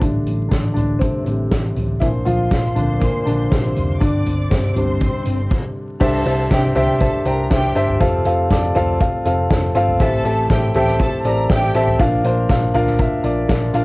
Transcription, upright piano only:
0.01 0.48 D3 medium
0.01 0.34 G3 soft
0.01 0.35 A3 soft
0.01 0.35 D4 medium
0.49 0.75 D3 medium
0.49 0.72 D4 medium
0.74 1.00 D3 medium
0.74 1.00 D4 medium
0.99 1.07 C3 medium
0.99 1.24 G3 soft
0.99 1.24 A3 soft
0.99 1.05 C4 medium
0.99 1.24 D4 soft
1.25 1.74 C3 medium
1.25 1.72 C4 medium
2.00 2.08 E3 medium
2.00 2.72 A#3 medium
2.00 2.73 C4 medium
2.00 2.73 D4 medium
2.00 2.06 E4 loud
2.25 2.73 F3 medium
2.25 2.77 F4 loud
2.75 3.00 D3 medium
2.75 2.98 A#3 soft
2.75 2.99 C4 soft
2.75 2.99 D4 medium
3.00 3.25 A#2 medium
3.00 3.24 A#3 medium
3.26 3.50 D3 medium
3.26 3.52 D4 medium
3.50 3.98 C3 medium
3.50 4.02 C4 medium
4.00 4.48 D3 medium
4.00 4.52 D4 loud
4.50 5.48 C3 medium
4.50 4.75 C4 medium
4.76 5.09 G3 medium
4.76 5.10 C4 soft
4.76 5.10 D4 medium
6.00 6.72 G2 medium
6.00 6.20 D4 loud
6.00 6.20 G4 loud
6.00 6.21 C5 loud
6.00 6.21 E5 loud
6.25 6.45 D4 medium
6.25 6.45 G4 medium
6.25 6.46 C5 medium
6.25 6.46 E5 loud
6.50 6.70 D4 medium
6.50 6.70 G4 medium
6.50 6.70 C5 medium
6.50 6.71 E5 loud
6.75 6.95 D4 loud
6.75 6.95 G4 loud
6.75 6.95 C5 loud
6.75 6.96 E5 loud
7.00 7.20 D4 medium
7.00 7.20 G4 medium
7.00 7.20 C5 medium
7.00 7.20 E5 loud
7.25 7.45 D4 medium
7.25 7.45 G4 medium
7.25 7.45 C5 medium
7.25 7.45 G5 medium
7.50 7.70 D4 medium
7.50 7.70 G4 medium
7.50 7.70 C5 medium
7.50 7.70 E5 loud
7.75 7.95 D4 loud
7.75 7.95 G4 loud
7.75 7.95 C5 medium
7.75 7.96 E5 loud
8.00 8.71 C3 medium
8.00 8.20 C4 loud
8.00 8.20 F4 loud
8.00 8.20 A4 loud
8.00 8.20 F5 loud
8.25 8.45 C4 medium
8.25 8.45 F4 medium
8.25 8.45 A4 medium
8.25 8.45 F5 medium
8.50 8.70 C4 medium
8.50 8.70 F4 medium
8.50 8.70 A4 medium
8.50 8.70 D5 medium
8.75 8.95 C4 loud
8.75 8.95 F4 loud
8.75 8.95 A4 loud
8.75 8.95 F5 loud
9.00 9.20 C4 medium
9.00 9.20 F4 medium
9.00 9.20 A4 medium
9.00 9.20 F5 loud
9.25 9.45 C4 medium
9.25 9.45 F4 medium
9.25 9.45 A4 medium
9.25 9.45 F5 loud
9.50 9.69 C4 medium
9.50 9.70 F4 medium
9.50 9.70 A4 medium
9.50 9.70 F5 medium
9.75 9.95 C4 loud
9.75 9.95 F4 loud
9.75 9.95 A4 loud
9.75 9.95 F5 loud
10.00 10.72 A2 medium
10.00 10.71 E3 medium
10.00 10.20 C4 loud
10.00 10.20 G4 loud
10.00 10.20 A4 loud
10.00 10.20 E5 loud
10.25 10.44 C4 medium
10.25 10.45 G4 medium
10.25 10.45 A4 medium
10.25 10.45 E5 medium
10.50 10.69 C4 medium
10.50 10.70 G4 medium
10.50 10.70 A4 medium
10.50 10.70 E5 medium
10.75 10.94 C4 loud
10.75 10.95 G4 loud
10.75 10.95 A4 loud
10.75 10.95 E5 loud
11.00 11.19 C4 loud
11.00 11.20 G4 medium
11.00 11.20 A4 medium
11.00 11.20 E5 medium
11.25 11.44 C4 medium
11.25 11.44 G4 medium
11.25 11.45 A4 medium
11.25 11.45 D5 loud
11.50 11.69 C4 medium
11.50 11.69 G4 medium
11.50 11.69 A4 medium
11.50 11.70 E5 medium
11.75 11.94 C4 loud
11.75 11.94 G4 loud
11.75 11.95 A4 loud
11.75 11.95 E5 loud
11.99 12.71 A#2 medium
11.99 12.71 F3 medium
11.99 12.19 D4 loud
11.99 12.19 F4 loud
11.99 12.19 A#4 loud
11.99 12.19 F5 loud
12.24 12.44 D4 medium
12.24 12.44 F4 medium
12.24 12.44 A#4 medium
12.24 12.44 C5 loud
12.49 12.69 D4 medium
12.49 12.69 F4 medium
12.49 12.69 A#4 medium
12.49 12.69 F5 medium
12.74 12.94 D4 loud
12.74 12.94 F4 loud
12.74 12.94 A#4 loud
12.74 12.94 F5 loud
12.99 13.18 D4 medium
12.99 13.19 F4 medium
12.99 13.19 A#4 medium
12.99 13.19 E5 medium
13.23 13.43 D4 medium
13.23 13.44 F4 medium
13.23 13.44 A#4 medium
13.23 13.44 D5 loud
13.49 13.68 D4 medium
13.49 13.69 F4 medium
13.49 13.69 A#4 medium
13.49 13.69 F5 medium
13.74 13.85 D4 loud
13.74 13.85 F4 medium
13.74 13.85 A#4 medium
13.74 13.85 F5 loud

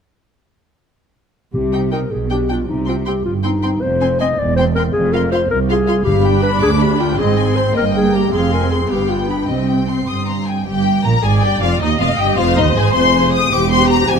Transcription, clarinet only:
1.54 1.90 G4 soft
1.92 2.13 A#4 soft
2.11 2.31 G#4 soft
2.31 2.53 G4 medium
2.51 2.68 F4 soft
2.69 2.87 D#4 medium
2.89 2.97 F4 soft
3.07 3.25 G4 medium
3.25 3.34 F4 medium
3.45 3.83 D#4 medium
3.82 4.20 C5 medium
4.21 4.40 D#5 medium
4.39 4.55 D5 medium
4.56 4.65 C5 medium
4.75 4.84 A#4 medium
4.93 5.15 G#4 medium
5.13 5.31 A#4 medium
5.32 5.50 C5 medium
5.51 5.59 A#4 medium
5.69 6.04 G#4 medium
6.05 6.42 G4 medium
6.43 6.52 B4 medium
6.63 6.71 G#4 medium
6.82 6.99 G4 medium
7.00 7.20 F4 medium
7.19 7.57 G#4 medium
7.56 7.75 C5 medium
7.77 7.85 A#4 medium
7.96 8.16 G#4 medium
8.15 8.36 G4 medium
8.35 8.52 G#4 medium
8.54 8.71 A#4 medium
8.71 8.93 G#4 medium
8.91 9.12 G4 medium
9.10 9.30 F4 medium
9.29 9.51 D4 soft
9.49 10.08 C4 soft

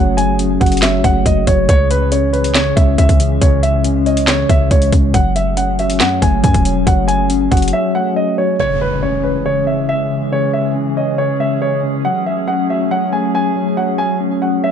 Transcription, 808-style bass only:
0.00 0.58 F#1 loud
0.61 1.02 F#1 loud
1.04 1.25 F#1 loud
1.26 1.46 F#1 loud
1.47 1.68 F#1 loud
1.69 2.73 C#2 loud
2.77 2.97 C#2 loud
2.98 3.08 C#2 loud
3.09 3.40 C#2 loud
3.42 4.45 C#2 loud
4.49 4.70 C#2 loud
4.71 4.92 C#2 loud
4.93 5.13 C#2 loud
5.14 6.02 F#1 loud
6.00 6.21 F#2 loud
6.22 6.43 F#1 loud
6.44 6.54 F#2 loud
6.54 6.86 E1 loud
6.87 7.49 F#1 loud
7.52 7.72 F#1 loud

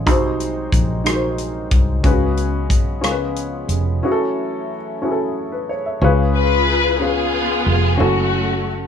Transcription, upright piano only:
0.06 1.02 C3 medium
0.06 0.74 D#4 medium
0.06 0.74 F#4 medium
0.06 0.74 G#4 medium
0.06 0.75 C5 medium
1.04 1.72 D#4 medium
1.04 1.73 F#4 soft
1.04 1.73 G#4 medium
1.04 1.13 A#4 soft
1.14 1.77 C5 medium
2.04 3.00 C#3 medium
2.04 2.72 C#4 medium
2.04 2.11 F4 medium
2.04 2.72 G#4 medium
2.04 2.73 B4 medium
2.11 2.75 F#4 medium
3.01 3.98 C#3 medium
3.01 3.70 C#4 medium
3.01 3.70 F4 medium
3.01 3.71 G#4 medium
3.01 3.10 A#4 soft
3.11 3.75 B4 medium
4.03 4.70 C#4 medium
4.03 4.71 E4 medium
4.03 4.71 F#4 medium
4.03 4.10 G#4 medium
4.11 4.75 A4 medium
5.02 5.69 C#4 medium
5.02 5.70 E4 medium
5.02 5.70 F#4 medium
5.02 5.10 G#4 soft
5.11 5.74 A4 medium
5.52 5.67 B4 medium
5.69 5.84 C#5 medium
5.86 6.17 E5 soft
6.02 6.97 C#3 medium
6.02 6.69 C#4 medium
6.02 6.70 F4 medium
6.02 6.70 G#4 medium
6.02 6.70 B4 medium
7.00 7.67 C#4 medium
7.00 7.68 F4 soft
7.00 7.68 G#4 medium
7.00 7.69 B4 medium
7.97 8.66 C#4 medium
7.97 8.66 E4 medium
7.97 8.67 F#4 medium
7.97 8.67 A4 medium

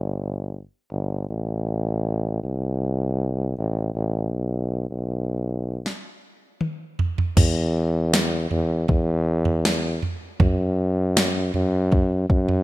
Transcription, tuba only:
0.00 0.60 G1 medium
0.91 1.27 G1 medium
1.30 2.40 A1 medium
2.43 3.53 C2 medium
3.58 3.93 A1 medium
3.95 4.35 A1 medium
4.33 4.86 B1 medium
4.91 5.81 B1 medium
7.37 8.47 E2 medium
8.51 8.86 E2 loud
8.89 9.99 E2 loud
10.40 11.51 F#2 medium
11.55 12.27 F#2 loud
12.30 12.63 F#2 medium

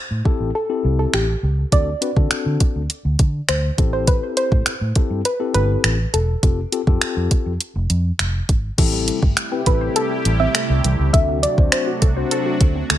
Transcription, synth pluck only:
0.00 0.51 C5 medium
0.55 0.96 A4 medium
0.99 1.14 A4 medium
1.14 1.74 G4 medium
1.73 3.54 D5 loud
3.49 3.90 C5 medium
3.93 4.07 C5 medium
4.08 4.35 B4 medium
4.37 4.92 C5 medium
5.25 5.53 B4 loud
5.54 6.15 B4 loud
6.14 8.45 A4 medium
9.67 9.94 B4 medium
9.96 10.37 A4 loud
10.40 11.12 E5 loud
11.13 11.44 E5 loud
11.43 11.70 D5 loud
11.72 12.86 C5 medium

